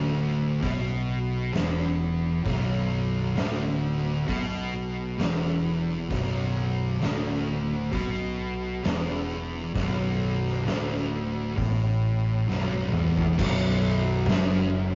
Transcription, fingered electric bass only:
0.00 0.58 D1 medium
0.63 1.50 B1 loud
1.54 2.41 E1 loud
2.46 3.33 B0 medium
3.37 4.24 D1 medium
4.28 5.15 B1 medium
5.19 6.06 E1 medium
6.11 6.98 B0 loud
7.02 7.89 D1 medium
7.93 8.80 B1 loud
8.84 9.71 E1 medium
9.76 10.63 B0 loud
10.66 11.53 D1 medium
11.58 12.44 A1 medium
12.48 12.90 B0 medium
12.94 13.35 E1 loud
13.39 14.25 B0 loud
14.29 14.95 F#1 medium

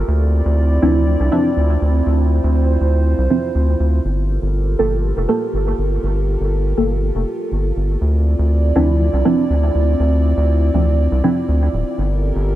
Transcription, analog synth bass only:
0.08 0.41 D2 loud
0.45 0.79 D2 loud
0.82 1.16 D2 medium
1.20 1.30 C2 loud
1.57 1.77 D2 medium
1.81 2.02 D2 medium
2.06 2.40 D2 loud
2.44 2.77 D2 loud
2.81 3.14 D2 medium
3.18 3.28 C2 loud
3.55 3.75 D2 medium
3.80 4.00 D2 medium
4.05 4.38 G1 loud
4.42 4.75 G1 loud
4.79 5.13 G1 medium
5.17 5.26 F1 medium
5.53 5.73 G1 medium
5.78 5.98 G1 medium
6.03 6.36 G1 loud
6.40 6.74 G1 loud
6.77 7.11 G1 medium
7.15 7.25 F1 loud
7.52 7.72 G1 medium
7.76 7.96 G1 medium
8.01 8.35 D2 loud
8.39 8.72 D2 loud
8.76 9.09 D2 medium
9.13 9.23 C2 loud
9.50 9.70 D2 medium
9.75 9.95 D2 medium
10.00 10.33 D2 loud
10.37 10.70 D2 loud
10.74 11.08 D2 medium
11.12 11.21 C2 medium
11.48 11.68 D2 medium
11.73 11.83 D1 loud
11.98 12.32 G1 loud
12.35 12.55 G1 loud

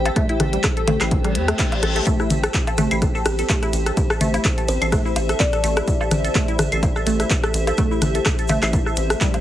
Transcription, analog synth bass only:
0.40 0.58 A1 loud
0.88 0.97 A1 medium
1.01 1.37 A1 medium
1.35 1.53 E2 medium
1.83 2.00 A1 medium
2.30 2.48 A1 loud
2.78 2.87 A1 medium
2.91 3.07 A1 medium
3.26 3.43 A1 medium
3.73 3.91 A1 medium
4.21 4.38 A1 loud
4.69 4.78 A1 medium
4.82 4.98 A1 medium
5.16 5.34 A1 medium
5.64 5.81 A1 medium
6.11 6.29 A1 loud
6.59 6.68 A1 medium
6.72 6.88 A1 medium
7.07 7.24 A1 medium
7.54 7.72 A1 medium
8.02 8.19 A1 loud
8.49 8.59 A1 medium
8.63 8.79 A1 medium
8.97 9.15 A1 medium

